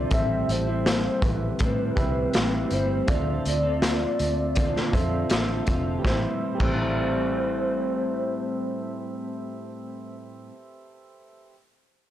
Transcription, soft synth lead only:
Already playing: D5
0.13 E5
0.51 C5
1.24 B4
2.73 C5
3.08 D5
6.04 C5
6.60 C5

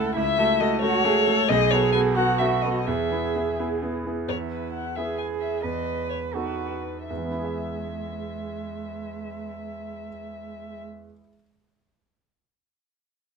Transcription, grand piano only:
Already playing: C#2 A3 E4 A4
0.16 C#2
0.38 A3 F#4 A4
0.60 A3 F#4 A4
0.82 A3 F#4 A4
1.04 A3 F#4 A4
1.27 A3 F#4 A4
1.50 B1
1.72 B3 F#4 A4
1.94 B3 F#4 A4
2.17 B3 F#4 A4
2.40 B3 F#4 A4
2.64 B3 F#4 A4
2.88 E2
3.11 B3 E4 G#4
3.35 B3 E4 G#4
3.59 B3 E4 G#4
3.82 B3 E4 G#4
4.06 B3 E4 G#4
4.28 E2
4.97 B3 E4 G#4
5.64 E2
6.35 B3 D#4 A4
7.10 E2
7.17 E3
7.24 B3
7.31 E4
7.38 G#4
7.45 E5

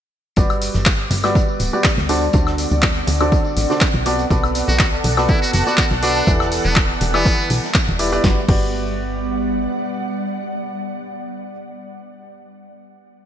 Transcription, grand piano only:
0.37 G3 F#4 G4 B4 D5
1.24 G3 F#4 G4 B4 D5
1.73 G3 F#4 G4 B4 D5
2.09 D3 F#4 A4 C5 D5
2.34 D3 F#4 A4 C5 D5
3.21 D3 F#4 A4 C5 D5
3.70 D3 F#4 A4 C5 D5
4.06 B3 F#4 A4 B4 D5
4.31 B3 F#4 A4 B4 D5
5.17 B3 F#4 A4 B4 D5
5.67 B3 F#4 A4 B4 D5
6.03 F#4 A4 B4 D5
6.27 E3 E4 G4 B4 D5
7.14 E3 E4 G4 B4 D5
7.99 E4 G4 B4 D5
8.12 E4 G4 B4 D5
8.24 F#4 G4
8.49 F#4 G4 B4 D5

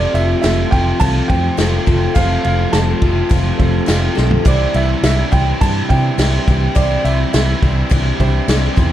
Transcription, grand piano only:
Already playing: D5
0.14 E5
0.41 E5
0.71 G5
1.00 A5
1.28 G5
2.14 F5
2.43 F5
2.72 A5
4.47 D5
4.76 E5
5.04 E5
5.32 G5
5.61 A5
5.89 G5
6.75 D5
7.04 E5
7.33 E5

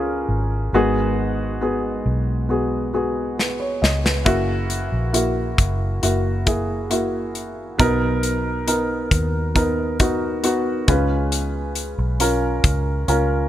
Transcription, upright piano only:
Already playing: C#4 F4 G#4 A#4 B4 C#5
0.74 G#2 D#3 B3 F#4 G#4
1.61 B3 F#4 G#4
2.49 B3 F#4 G#4
2.93 B3 F#4 G#4
3.38 B4
3.60 C#5
3.82 D#5
4.04 B4
4.25 C#3 A#3 E4 F#4
5.13 A#3 E4 F#4
6.02 A#3 E4 F#4
6.46 A#3 E4 G#4
6.90 A#3 E4 F#4
7.78 B2 F#3 B3 D#4 A#4
8.67 B3 D#4 A#4
9.55 B3 D#4 A#4
9.99 B3 D#4 F#4
10.43 B3 D#4 F#4
10.88 C#3 G#3 C#4 F4 B4
12.20 C#4 F4 A#4
13.08 C#4 F4 A#4

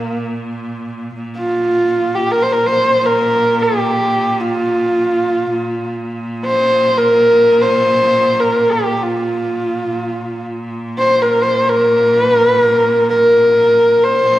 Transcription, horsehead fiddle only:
Already playing: A#3
1.38 F4
2.15 G4
2.31 A#4
2.42 C5
2.52 A#4
2.67 C5
3.06 A#4
3.62 G4
4.41 F4
6.46 C5
6.97 A#4
7.61 C5
8.40 A#4
8.71 G4
9.03 F4
10.98 C5
11.22 A#4
11.42 C5
11.69 A#4
12.20 B4
12.34 A#4
12.49 B4
12.62 A#4
13.10 A#4
14.04 C5

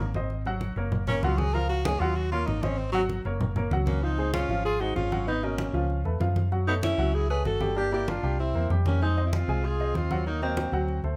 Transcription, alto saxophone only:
3.88 C#4
4.03 D#4
4.34 F4
4.65 G#4
4.80 F#4
4.96 F4
5.28 D#4
5.44 C#4
6.67 D#4
6.84 E4
7.14 G#4
7.30 B4
7.47 A4
7.78 G4
7.94 G4
8.08 F4
8.40 E4
8.87 C#4
9.02 D#4
9.27 E4
9.34 F4
9.65 G#4
9.97 F4
10.27 D#4
10.43 C4

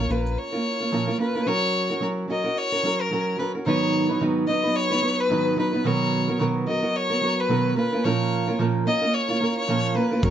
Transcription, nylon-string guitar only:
0.00 A#3 C#4 F4
0.09 A#3 C#4 F4 A#4
0.53 A#3 C#4 F4 A#4
0.80 A#3 C#4 F4 A#4
0.92 A#2 F3 A#3 C#4 F4 A#4
1.07 A#3 C#4 F4 A#4
1.18 A#3 C#4 F4 A#4
1.35 A#3 C#4 F4 A#4
1.46 F#3 C#4 F#4 A#4
1.90 C#4 F#4 A#4
2.00 F#3 C#4 F#4 A#4
2.28 F#3 C#4 F#4 A#4
2.44 C#4 F#4 A#4
2.72 C#4 F#4 A#4
2.83 F#3 C#4 F#4 A#4
3.11 F#3 C#4 F#4 A#4
3.38 F#3 C#4 F#4 A#4
3.55 C#4 F#4 A#4
3.66 G#2 D#3 F#3 B3 D#4 B4
4.09 F#3 B3 D#4 B4
4.20 G#2 D#3 F#3 B3 D#4 B4
4.47 F#3 B3 D#4 B4
4.63 F#3 B3 D#4 B4
4.91 F#3 B3 D#4 B4
5.01 F#3 B3 D#4 B4
5.29 G#2 D#3 F#3 B3 D#4 B4
5.56 F#3 B3 D#4 B4
5.73 F#3 B3 D#4 B4
5.84 B2 D#3 F#3 B3 F#4 A#4
6.28 F#3 B3 F#4 A#4
6.39 B2 D#3 F#3 B3 F#4 A#4
6.66 F#3 B3 F#4 A#4
6.83 F#3 B3 F#4 A#4
7.10 F#3 B3 F#4 A#4
7.21 F#3 B3 F#4 A#4
7.49 B2 D#3 F#3 B3 F#4 A#4
7.76 A#3 C#4 F4 A#4
7.93 A#3 C#4 F4 A#4
8.04 A#2 F3 A#3 C#4 F4 A#4
8.48 A#3 C#4 F4 A#4
8.59 A#2 F3 A#3 C#4 F4 A#4
8.86 A#3 C#4 F4 A#4
9.02 A#3 C#4 F4 A#4
9.29 A#3 C#4 F4 A#4
9.40 A#3 C#4 F4 A#4
9.68 A#2 F3 A#3 C#4 F4 A#4
9.95 A#3 C#4 F4 A#4
10.11 A#3 C#4 F4 A#4
10.22 F#3 C#4 F#4 A#4

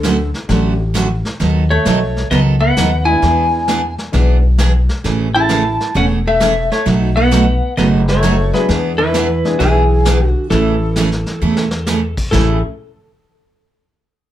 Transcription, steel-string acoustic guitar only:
0.03 D3 F#3 A3 C#4 F#4
0.49 D3 F#3 A3 C#4 F#4
0.94 D3 F#3 A3 C#4 F#4
1.40 D#3 F#3 B3 D#4 A4
1.86 D#3 F#3 B3 D#4 A4
2.32 D#3 F#3 B3 D#4 A4
2.77 D#3 F#3 B3 D#4 A4
3.22 E3 B3 D4 G#4
3.68 E3 B3 D4 G#4
4.13 E3 B3 D4 G#4
4.59 E3 B3 D4 G#4
5.04 C#3 E3 A3 C#4 G#4
5.49 C#3 E3 A3 C#4 G#4
5.94 C#3 E3 A3 C#4 G#4
6.41 C#3 E3 A3 C#4 G#4
6.86 B2 F#3 A3 D#4 F#4
7.31 B2 F#3 A3 D#4 F#4
7.77 B2 F#3 A3 D#4 F#4
8.23 B2 F#3 A3 D#4 F#4
8.69 E3 B3 D4 G#4
9.14 E3 B3 D4 G#4
9.60 E3 B3 D4 G#4
10.06 E3 B3 D4 G#4
10.52 C#3 E3 A3 C#4 G#4
10.97 C#3 E3 A3 C#4 G#4
11.42 C#3 E3 A3 C#4 G#4
11.87 C#3 E3 A3 C#4 G#4
12.33 A2 C#3 E3 A3 C#4 G#4

